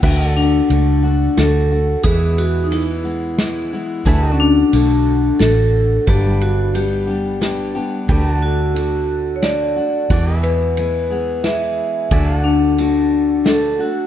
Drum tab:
CC |x-----|------|------|------|
RD |--x-x-|xxx-x-|x-x-x-|xxx-x-|
SD |----o-|----o-|----o-|----o-|
BD |o-----|o-----|o-----|o-----|

CC |------|------|------|
RD |x-x-x-|xxx-x-|x-x-x-|
SD |----o-|----o-|----o-|
BD |o-----|o-----|o-----|